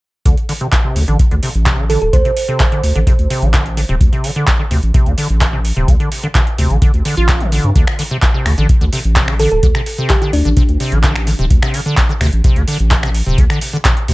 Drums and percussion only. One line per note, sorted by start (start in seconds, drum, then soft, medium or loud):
0.26 kick loud
0.26 closed hi-hat medium
0.38 closed hi-hat soft
0.49 open hi-hat loud
0.61 closed hi-hat soft
0.72 kick loud
0.72 clap loud
0.72 closed hi-hat medium
0.96 open hi-hat medium
1.08 closed hi-hat soft
1.19 kick loud
1.19 closed hi-hat medium
1.31 closed hi-hat soft
1.43 open hi-hat loud
1.55 closed hi-hat soft
1.66 kick loud
1.66 clap loud
1.66 closed hi-hat medium
1.90 open hi-hat medium
2.02 closed hi-hat soft
2.13 kick loud
2.13 closed hi-hat medium
2.25 closed hi-hat soft
2.37 open hi-hat loud
2.49 closed hi-hat soft
2.60 kick loud
2.60 clap loud
2.60 closed hi-hat medium
2.72 closed hi-hat soft
2.84 open hi-hat medium
2.96 closed hi-hat soft
3.07 kick loud
3.07 closed hi-hat medium
3.19 closed hi-hat soft
3.30 open hi-hat loud
3.42 closed hi-hat soft
3.54 kick loud
3.54 clap loud
3.54 closed hi-hat medium
3.66 closed hi-hat soft
3.77 open hi-hat medium
4.01 kick loud
4.01 closed hi-hat medium
4.13 closed hi-hat soft
4.24 open hi-hat loud
4.36 closed hi-hat soft
4.47 kick loud
4.47 clap loud
4.47 closed hi-hat medium
4.71 open hi-hat medium
4.83 closed hi-hat soft
4.94 kick loud
4.94 closed hi-hat medium
5.06 closed hi-hat soft
5.18 open hi-hat loud
5.30 closed hi-hat soft
5.41 kick loud
5.41 clap loud
5.41 closed hi-hat medium
5.65 open hi-hat medium
5.77 closed hi-hat soft
5.88 kick loud
5.88 closed hi-hat medium
6.00 closed hi-hat soft
6.12 open hi-hat loud
6.35 kick loud
6.35 clap loud
6.35 closed hi-hat medium
6.47 closed hi-hat soft
6.58 open hi-hat medium
6.70 closed hi-hat soft
6.82 kick loud
6.82 closed hi-hat medium
6.94 closed hi-hat soft
7.05 open hi-hat loud
7.17 closed hi-hat soft
7.29 kick loud
7.29 clap loud
7.29 closed hi-hat medium
7.41 closed hi-hat soft
7.52 open hi-hat medium
7.64 closed hi-hat soft
7.76 kick loud
7.76 closed hi-hat medium
7.87 finger snap medium
7.87 closed hi-hat soft
7.99 open hi-hat loud
8.11 closed hi-hat soft
8.22 kick loud
8.22 clap loud
8.22 closed hi-hat medium
8.46 finger snap medium
8.46 open hi-hat medium
8.58 closed hi-hat soft
8.69 kick loud
8.69 closed hi-hat medium
8.81 closed hi-hat soft
8.93 open hi-hat loud
9.05 closed hi-hat soft
9.16 kick loud
9.16 clap loud
9.16 closed hi-hat medium
9.28 finger snap medium
9.39 open hi-hat medium
9.51 closed hi-hat soft
9.63 kick loud
9.63 closed hi-hat medium
9.75 finger snap medium
9.75 closed hi-hat soft
9.86 open hi-hat medium
9.98 closed hi-hat soft
10.10 kick loud
10.10 clap loud
10.10 closed hi-hat medium
10.22 closed hi-hat soft
10.33 open hi-hat medium
10.45 closed hi-hat soft
10.57 kick loud
10.57 closed hi-hat medium
10.69 closed hi-hat soft
10.80 open hi-hat medium
10.92 closed hi-hat soft
11.03 kick loud
11.03 clap loud
11.03 closed hi-hat medium
11.16 finger snap medium
11.16 closed hi-hat soft
11.27 open hi-hat medium
11.39 closed hi-hat soft
11.50 kick loud
11.50 closed hi-hat medium
11.63 finger snap medium
11.63 closed hi-hat soft
11.74 open hi-hat medium
11.86 closed hi-hat soft
11.97 kick loud
11.97 clap loud
11.97 closed hi-hat medium
12.21 finger snap medium
12.21 open hi-hat medium
12.33 closed hi-hat medium
12.44 kick loud
12.44 closed hi-hat medium
12.56 closed hi-hat soft
12.68 open hi-hat medium
12.80 closed hi-hat soft
12.91 kick loud
12.91 clap loud
12.91 closed hi-hat medium
13.03 finger snap medium
13.15 open hi-hat medium
13.27 closed hi-hat soft
13.38 kick loud
13.38 closed hi-hat medium
13.50 finger snap medium
13.50 closed hi-hat soft
13.61 open hi-hat loud
13.73 closed hi-hat soft
13.85 kick loud
13.85 clap loud
13.85 closed hi-hat medium
13.97 closed hi-hat soft
14.08 open hi-hat medium